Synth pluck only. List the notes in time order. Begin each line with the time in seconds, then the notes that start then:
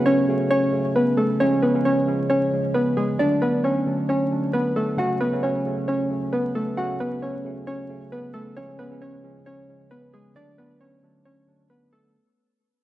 0.06 C#4 C#5
0.51 C#4 C#5
0.96 B3 B4
1.17 A3 A4
1.40 C#4 C#5
1.63 B3 B4
1.85 C#4 C#5
2.30 C#4 C#5
2.74 B3 B4
2.97 G#3 G#4
3.19 D4 D5
3.42 B3 B4
3.64 C#4 C#5
4.09 C#4 C#5
4.53 B3 B4
4.76 A3 A4
4.98 F#4 F#5
5.21 B3 B4
5.43 C#4 C#5
5.88 C#4 C#5
6.33 B3 B4
6.55 A3 A4
6.77 F#4 F#5
7.00 B3 B4
7.22 C#4 C#5
7.67 C#4 C#5
8.12 B3 B4
8.34 A3 A4
8.57 C#4 C#5
8.79 B3 B4
9.02 C#4 C#5
9.46 C#4 C#5
9.91 B3 B4
10.14 G#3 G#4
10.36 D4 D5
10.58 B3 B4
10.81 C#4 C#5
11.25 C#4 C#5
11.70 B3 B4
11.93 A3 A4